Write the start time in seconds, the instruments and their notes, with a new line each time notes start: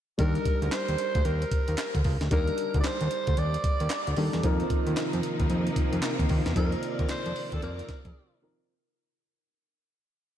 0.18 analog synth bass D#2, grand piano G3 D4 D#4 A#4, alto saxophone A#4, kick, closed hi-hat
0.35 closed hi-hat
0.45 kick, closed hi-hat
0.62 analog synth bass D2, closed hi-hat
0.72 alto saxophone C5, snare, clap, closed hi-hat
0.88 analog synth bass D#2, closed hi-hat
0.98 closed hi-hat
1.15 analog synth bass D2, kick, closed hi-hat
1.25 analog synth bass D#2, alto saxophone A#4, closed hi-hat
1.42 closed hi-hat
1.51 kick, closed hi-hat
1.68 analog synth bass D#2, closed hi-hat
1.78 snare, clap, closed hi-hat
1.95 analog synth bass D2, kick, closed hi-hat
2.04 analog synth bass C#2, kick, open hi-hat
2.21 analog synth bass D2, snare, closed hi-hat
2.31 analog synth bass D#2, grand piano G3 D4 D#4 A#4, alto saxophone A#4, kick, closed hi-hat
2.47 closed hi-hat
2.58 closed hi-hat
2.74 analog synth bass D2, kick, closed hi-hat
2.80 alto saxophone D5, snare, closed hi-hat
2.85 alto saxophone C5, clap
3.01 analog synth bass D#2, closed hi-hat
3.11 closed hi-hat
3.27 analog synth bass D2, kick, closed hi-hat
3.37 analog synth bass D#2, alto saxophone D5, closed hi-hat
3.54 closed hi-hat
3.64 kick, closed hi-hat
3.80 analog synth bass D#2, closed hi-hat
3.90 snare, clap, closed hi-hat
4.07 analog synth bass D2, closed hi-hat
4.17 analog synth bass D#2, grand piano G3 D4 D#4 A4, open hi-hat
4.33 analog synth bass E2, snare, closed hi-hat
4.43 analog synth bass F2, string section C3 D#3 F3 A#3 D#4, grand piano F3 C4 D#4 A#4, kick, closed hi-hat
4.60 closed hi-hat
4.70 kick, closed hi-hat
4.87 analog synth bass D#2, closed hi-hat
4.96 snare, clap, closed hi-hat
5.13 analog synth bass F2, closed hi-hat
5.23 closed hi-hat
5.40 analog synth bass D#2, kick, closed hi-hat
5.50 analog synth bass F2, closed hi-hat
5.67 closed hi-hat
5.76 kick, closed hi-hat
5.93 analog synth bass F2, closed hi-hat
6.03 snare, clap, closed hi-hat
6.19 analog synth bass D#2, kick, closed hi-hat
6.29 analog synth bass D#2, kick, open hi-hat
6.46 analog synth bass E2, snare, closed hi-hat
6.55 analog synth bass F2, grand piano F3 C4 D#4 A#4, alto saxophone A#4, string section D5, kick, closed hi-hat
6.72 closed hi-hat
6.83 closed hi-hat
6.99 analog synth bass D#2, kick, closed hi-hat
7.09 alto saxophone C5, snare, clap, closed hi-hat
7.26 analog synth bass F2, closed hi-hat
7.36 open hi-hat
7.52 analog synth bass D#2, alto saxophone A4, kick, closed hi-hat
7.62 analog synth bass F2, alto saxophone A#4, closed hi-hat
7.79 closed hi-hat
7.89 kick, snare, closed hi-hat
8.05 analog synth bass F2, kick, closed hi-hat
8.42 grand piano F3 C4 D#4 A#4